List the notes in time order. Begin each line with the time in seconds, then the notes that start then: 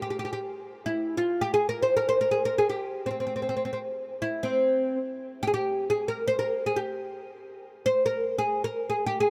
0.02 G4
0.10 G4
0.19 G4
0.25 G4
0.33 G4
0.86 E4
1.17 F4
1.41 G4
1.54 G#4
1.69 A#4
1.82 C5
1.97 A#4
2.09 C5
2.21 A#4
2.31 G#4
2.45 A#4
2.58 G#4
2.69 G4
3.06 C4
3.11 C4
3.20 C4
3.27 C4
3.36 C4
3.42 C4
3.49 C4
3.57 C4
3.65 C4
3.73 C4
4.22 E4
4.43 C4
5.43 G4
5.47 G#4
5.54 G4
5.90 G#4
6.08 A#4
6.28 C5
6.39 A#4
6.66 G#4
6.76 G4
7.86 C5
8.06 A#4
8.38 G#4
8.64 A#4
8.90 G#4
9.06 G4
9.20 G#4